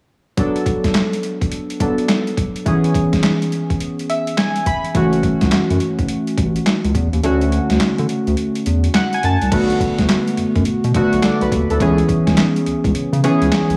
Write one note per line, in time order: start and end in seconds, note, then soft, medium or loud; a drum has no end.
0.37 1.77 F#3 medium
0.37 1.78 B3 medium
0.37 1.78 D4 medium
0.37 1.79 A4 medium
0.37 kick loud
0.37 closed hi-hat medium
0.56 closed hi-hat medium
0.66 kick medium
0.66 closed hi-hat medium
0.84 kick medium
0.84 snare medium
0.84 closed hi-hat soft
0.95 snare loud
0.95 clap medium
0.95 closed hi-hat medium
1.13 closed hi-hat medium
1.23 closed hi-hat medium
1.41 kick medium
1.41 closed hi-hat soft
1.52 closed hi-hat medium
1.70 closed hi-hat medium
1.80 2.66 F#3 medium
1.80 2.65 B3 medium
1.80 2.67 D4 medium
1.80 2.67 A4 medium
1.80 kick medium
1.80 closed hi-hat medium
1.98 closed hi-hat medium
2.09 snare loud
2.09 clap medium
2.09 closed hi-hat medium
2.27 closed hi-hat soft
2.37 kick medium
2.37 closed hi-hat medium
2.56 closed hi-hat soft
2.65 4.90 E3 medium
2.65 4.91 B3 medium
2.65 4.91 C#4 medium
2.65 4.91 G#4 medium
2.65 kick loud
2.65 closed hi-hat medium
2.84 closed hi-hat medium
2.95 kick medium
2.95 closed hi-hat medium
3.13 kick medium
3.13 snare medium
3.13 closed hi-hat medium
3.23 snare loud
3.23 clap medium
3.23 closed hi-hat medium
3.42 closed hi-hat medium
3.52 closed hi-hat medium
3.70 kick medium
3.70 closed hi-hat soft
3.80 closed hi-hat medium
3.99 closed hi-hat soft
4.10 4.36 E5 medium
4.10 closed hi-hat medium
4.27 closed hi-hat medium
4.38 4.64 G#5 medium
4.38 snare loud
4.38 clap medium
4.38 closed hi-hat medium
4.56 closed hi-hat medium
4.66 4.93 B5 medium
4.66 kick medium
4.66 closed hi-hat medium
4.85 closed hi-hat soft
4.95 5.30 F#1 loud
4.95 7.19 E3 medium
4.95 7.20 A3 medium
4.95 7.20 C#4 medium
4.95 7.20 F#4 medium
4.95 kick loud
4.95 closed hi-hat medium
5.13 closed hi-hat medium
5.23 kick medium
5.23 closed hi-hat medium
5.41 5.49 C#2 medium
5.41 kick medium
5.41 snare medium
5.41 closed hi-hat medium
5.52 5.59 F#2 soft
5.52 snare loud
5.52 clap medium
5.52 closed hi-hat medium
5.70 5.78 F#2 loud
5.70 closed hi-hat medium
5.80 closed hi-hat medium
5.99 6.07 F#1 loud
5.99 kick medium
5.99 closed hi-hat soft
6.08 closed hi-hat medium
6.27 closed hi-hat soft
6.38 6.59 A1 medium
6.38 kick loud
6.38 closed hi-hat medium
6.56 closed hi-hat medium
6.66 snare loud
6.66 clap medium
6.66 closed hi-hat medium
6.84 6.92 C#2 loud
6.84 closed hi-hat soft
6.95 7.08 E2 medium
6.95 kick medium
6.95 closed hi-hat medium
7.13 7.21 D#2 loud
7.13 closed hi-hat soft
7.23 7.59 D2 loud
7.23 9.48 D3 medium
7.23 9.48 A3 medium
7.23 9.48 C#4 medium
7.23 9.49 F#4 medium
7.23 closed hi-hat medium
7.41 closed hi-hat medium
7.52 closed hi-hat medium
7.70 7.78 D2 medium
7.70 snare medium
7.70 closed hi-hat medium
7.80 7.88 D3 soft
7.80 snare loud
7.80 clap medium
7.80 closed hi-hat medium
7.98 8.07 D3 loud
7.98 closed hi-hat medium
8.09 closed hi-hat medium
8.27 8.35 D2 medium
8.27 closed hi-hat soft
8.37 closed hi-hat medium
8.55 closed hi-hat medium
8.66 8.88 E2 medium
8.66 closed hi-hat medium
8.84 closed hi-hat medium
8.94 9.12 F#5 medium
8.94 snare loud
8.94 clap medium
8.94 closed hi-hat medium
9.13 9.23 G#5 medium
9.13 closed hi-hat medium
9.23 9.37 F#2 medium
9.23 9.51 A5 medium
9.23 closed hi-hat medium
9.42 9.50 C2 medium
9.42 closed hi-hat medium
9.52 9.74 B1 loud
9.52 10.28 D3 medium
9.52 10.29 A3 medium
9.52 10.29 B3 medium
9.52 10.29 F#4 medium
9.52 kick loud
9.52 closed hi-hat medium
9.52 crash medium
9.70 closed hi-hat medium
9.80 kick loud
9.80 closed hi-hat medium
9.98 10.06 D2 loud
9.98 kick medium
9.98 snare medium
9.98 closed hi-hat medium
10.09 snare loud
10.09 clap medium
10.09 closed hi-hat medium
10.28 closed hi-hat medium
10.37 10.45 F#2 soft
10.37 closed hi-hat medium
10.56 10.64 F#2 medium
10.56 kick medium
10.56 closed hi-hat soft
10.65 10.73 B2 soft
10.65 closed hi-hat medium
10.84 10.92 B2 medium
10.84 closed hi-hat medium
10.94 11.50 D3 medium
10.94 11.50 A3 medium
10.94 11.51 B3 medium
10.94 11.24 F#4 loud
10.94 kick loud
10.94 closed hi-hat medium
11.13 11.21 B1 medium
11.13 closed hi-hat medium
11.23 11.41 A4 medium
11.23 11.41 D5 medium
11.23 snare loud
11.23 clap medium
11.23 closed hi-hat medium
11.41 11.49 B1 loud
11.41 11.69 F#4 medium
11.41 11.69 B4 medium
11.41 closed hi-hat medium
11.52 11.66 D#2 medium
11.52 kick medium
11.52 closed hi-hat medium
11.70 11.78 D2 medium
11.70 11.98 E4 medium
11.70 11.97 A4 medium
11.70 closed hi-hat medium
11.80 12.02 C#2 loud
11.80 12.57 E3 medium
11.80 12.57 B3 medium
11.80 12.57 C#4 medium
11.80 12.57 G#4 medium
11.80 kick loud
11.80 closed hi-hat medium
11.98 closed hi-hat medium
12.09 kick loud
12.09 closed hi-hat medium
12.27 12.35 C#2 medium
12.27 kick medium
12.27 snare medium
12.27 closed hi-hat medium
12.37 snare loud
12.37 clap medium
12.37 closed hi-hat medium
12.56 closed hi-hat medium
12.66 12.74 C#2 soft
12.66 closed hi-hat medium
12.84 12.92 C#2 medium
12.84 kick medium
12.84 closed hi-hat soft
12.95 13.02 C#3 soft
12.95 closed hi-hat medium
13.12 13.21 C#3 loud
13.12 closed hi-hat medium
13.23 13.77 E3 medium
13.23 13.77 B3 medium
13.23 13.77 C#4 medium
13.23 13.77 G#4 loud
13.23 closed hi-hat medium
13.41 13.49 C#2 medium
13.41 closed hi-hat medium
13.52 13.59 B1 soft
13.52 snare loud
13.52 clap medium
13.52 closed hi-hat medium
13.70 13.77 B1 medium
13.70 closed hi-hat medium